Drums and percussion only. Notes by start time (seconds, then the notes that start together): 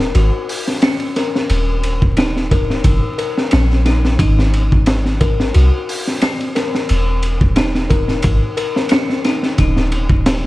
0.00 snare
0.15 ride
0.49 open hi-hat
0.67 snare
0.82 snare, ride
1.00 ride
1.16 snare, ride
1.35 snare
1.49 ride
1.83 ride
2.02 kick
2.17 snare, ride
2.37 snare
2.51 kick, ride
2.70 snare
2.84 kick, ride
3.19 ride
3.38 snare
3.51 snare, ride
3.71 snare
3.86 snare, ride
4.05 snare
4.19 kick, ride
4.39 snare
4.53 ride
4.72 kick
4.86 snare, ride
5.05 snare
5.21 kick, ride
5.40 snare
5.54 ride
5.89 open hi-hat
6.07 snare
6.21 snare, ride
6.40 ride
6.56 snare, ride
6.75 snare
6.89 ride
7.23 ride
7.41 kick
7.56 snare, ride
7.75 snare
7.90 kick, ride
8.08 snare
8.22 kick, ride
8.57 ride
8.76 snare
8.89 snare, ride
9.10 snare
9.24 snare, ride
9.43 snare
9.58 kick, ride
9.76 snare
9.92 ride
10.09 kick
10.26 snare, ride